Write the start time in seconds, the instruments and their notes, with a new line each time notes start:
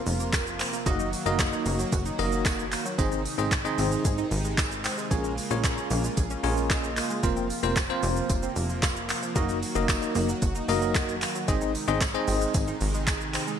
Already playing: supersaw synth C3 F3 A#3 F4, impact
0.06 analog synth bass F1, open hi-hat, shaker
0.20 synth arpeggio sound A#3, shaker
0.33 synth arpeggio sound A#4, kick, snare, clap, closed hi-hat, tambourine, shaker
0.47 shaker
0.60 synth arpeggio sound C4, clap, open hi-hat, tambourine, shaker
0.73 synth arpeggio sound A#3, shaker
0.86 analog synth bass F#1, supersaw synth D#3 F#3 F#4, tine electric piano A#3 D#4 F#4 A#4 D#5, synth arpeggio sound F#4, kick, closed hi-hat, shaker
1.00 synth arpeggio sound D#4, shaker
1.13 open hi-hat, tambourine, shaker
1.26 analog synth bass F#1, tine electric piano A#3 D#4 F#4 A#4 D#5, shaker
1.39 kick, snare, clap, closed hi-hat, tambourine, shaker
1.53 synth arpeggio sound D#4, shaker
1.66 analog synth bass F#1, synth arpeggio sound A#3, open hi-hat, tambourine, shaker
1.79 synth arpeggio sound F#3, shaker
1.92 analog synth bass F#1, synth arpeggio sound F#4, kick, closed hi-hat, tambourine, shaker
2.06 synth arpeggio sound D#4, shaker
2.19 analog synth bass F#1, tine electric piano A#3 D#4 F#4 A#4 D#5, open hi-hat, tambourine, shaker
2.32 synth arpeggio sound F#3, shaker
2.46 synth arpeggio sound F#4, kick, snare, clap, closed hi-hat, tambourine, shaker
2.59 shaker
2.72 synth arpeggio sound A#3, clap, open hi-hat, tambourine, shaker
2.85 synth arpeggio sound F#3, shaker
2.98 analog synth bass G#1, supersaw synth C3 D#3 G#3 D#4, tine electric piano C4 D#4 G#4 C5 D#5, synth arpeggio sound G#4, kick, closed hi-hat, tambourine, shaker
3.12 synth arpeggio sound D#4, shaker
3.25 open hi-hat, tambourine, shaker
3.38 analog synth bass G#1, tine electric piano C4 D#4 G#4 C5 D#5, shaker
3.51 kick, snare, clap, closed hi-hat, tambourine, shaker
3.65 tine electric piano C4 D#4 G#4 C5 D#5, synth arpeggio sound D#4, shaker
3.78 analog synth bass G#1, synth arpeggio sound C4, open hi-hat, tambourine, shaker
3.92 synth arpeggio sound G#3, shaker
4.05 analog synth bass G#1, synth arpeggio sound G#4, kick, closed hi-hat, tambourine, shaker
4.18 synth arpeggio sound D#4, shaker
4.31 analog synth bass G#1, open hi-hat, tambourine, shaker
4.45 synth arpeggio sound G#3, shaker
4.58 synth arpeggio sound G#4, kick, snare, clap, closed hi-hat, tambourine, shaker
4.72 shaker
4.84 synth arpeggio sound C4, clap, open hi-hat, tambourine, shaker
4.98 synth arpeggio sound G#3, shaker
5.11 analog synth bass A#1, supersaw synth C#3 A#3 F4, tine electric piano C#4 F4 G#4 A#4 C#5, synth arpeggio sound G#4, kick, closed hi-hat, tambourine, shaker
5.24 synth arpeggio sound C#4, shaker
5.38 open hi-hat, tambourine, shaker
5.51 analog synth bass A#1, tine electric piano C#4 F4 G#4 A#4 C#5, shaker
5.64 kick, snare, clap, closed hi-hat, tambourine, shaker
5.78 synth arpeggio sound C#4, shaker
5.90 analog synth bass A#1, synth arpeggio sound A#3, open hi-hat, tambourine, shaker
6.04 synth arpeggio sound G#3, shaker
6.17 analog synth bass A#1, synth arpeggio sound G#4, kick, closed hi-hat, tambourine, shaker
6.30 synth arpeggio sound C#4, shaker
6.44 analog synth bass A#1, tine electric piano C#4 F4 G#4 A#4 C#5 G#5, open hi-hat, tambourine, shaker
6.57 synth arpeggio sound G#3, shaker
6.70 synth arpeggio sound G#4, tine electric piano D#5, kick, snare, clap, closed hi-hat, tambourine, shaker
6.84 shaker
6.97 synth arpeggio sound A#3, clap, open hi-hat, tambourine, shaker
7.10 synth arpeggio sound G#3, shaker
7.23 analog synth bass F1, supersaw synth C3 F3, tine electric piano A#3 C4 F4 A#4 C5, synth arpeggio sound F4, kick, closed hi-hat, tambourine, shaker
7.37 synth arpeggio sound C4, shaker
7.50 open hi-hat, tambourine, shaker
7.63 analog synth bass F1, tine electric piano A#3 C4 F4 A#4 C5, shaker
7.76 kick, snare, clap, closed hi-hat, tambourine, shaker
7.89 tine electric piano A#3 C4 F4 A#4 C5, synth arpeggio sound C4, shaker
8.03 analog synth bass F1, synth arpeggio sound A#3, open hi-hat, tambourine, shaker
8.16 synth arpeggio sound F3, shaker
8.30 analog synth bass F1, synth arpeggio sound F4, kick, closed hi-hat, tambourine, shaker
8.43 synth arpeggio sound C4, shaker
8.56 analog synth bass F1, open hi-hat, tambourine, shaker
8.69 synth arpeggio sound F3, shaker
8.83 synth arpeggio sound F4, kick, snare, clap, closed hi-hat, tambourine, shaker
8.96 shaker
9.09 synth arpeggio sound A#3, clap, open hi-hat, tambourine, shaker
9.23 synth arpeggio sound F3, shaker
9.35 analog synth bass F#1, supersaw synth D#3 F#3 F#4, tine electric piano A#3 D#4 F#4 A#4 D#5, synth arpeggio sound F#4, kick, closed hi-hat, tambourine, shaker
9.49 synth arpeggio sound D#4, shaker
9.63 open hi-hat, tambourine, shaker
9.75 analog synth bass F#1, tine electric piano A#3 D#4 F#4 A#4 D#5, shaker
9.89 kick, snare, clap, closed hi-hat, tambourine, shaker
10.02 synth arpeggio sound D#4, shaker
10.15 analog synth bass F#1, synth arpeggio sound A#3, open hi-hat, tambourine, shaker
10.29 synth arpeggio sound F#3, shaker
10.42 analog synth bass F#1, synth arpeggio sound F#4, kick, closed hi-hat, tambourine, shaker
10.55 synth arpeggio sound D#4, shaker
10.68 analog synth bass F#1, tine electric piano A#3 D#4 F#4 A#4 D#5, open hi-hat, tambourine, shaker
10.82 synth arpeggio sound F#3, shaker
10.95 synth arpeggio sound F#4, kick, snare, clap, closed hi-hat, tambourine, shaker
11.09 shaker
11.22 synth arpeggio sound A#3, clap, open hi-hat, tambourine, shaker
11.35 synth arpeggio sound F#3, shaker
11.48 analog synth bass G#1, supersaw synth C3 G#3 D#4, tine electric piano C4 D#4 G#4 C5 D#5, synth arpeggio sound G#4, kick, closed hi-hat, tambourine, shaker
11.61 synth arpeggio sound D#4, shaker
11.75 open hi-hat, tambourine, shaker
11.88 analog synth bass G#1, tine electric piano C4 D#4 G#4 C5 D#5, shaker
12.01 kick, snare, clap, closed hi-hat, tambourine, shaker
12.14 tine electric piano C4 D#4 G#4 C5 D#5, synth arpeggio sound D#4, shaker
12.28 analog synth bass G#1, synth arpeggio sound C4, open hi-hat, tambourine, shaker
12.41 synth arpeggio sound G#3, shaker
12.54 analog synth bass G#1, synth arpeggio sound G#4, kick, closed hi-hat, tambourine, shaker
12.68 synth arpeggio sound D#4, shaker
12.81 analog synth bass G#1, open hi-hat, tambourine, shaker
12.94 synth arpeggio sound G#3, shaker
13.07 synth arpeggio sound G#4, kick, snare, clap, closed hi-hat, tambourine, shaker
13.21 shaker
13.34 synth arpeggio sound C4, clap, open hi-hat, tambourine, shaker
13.47 synth arpeggio sound G#3, shaker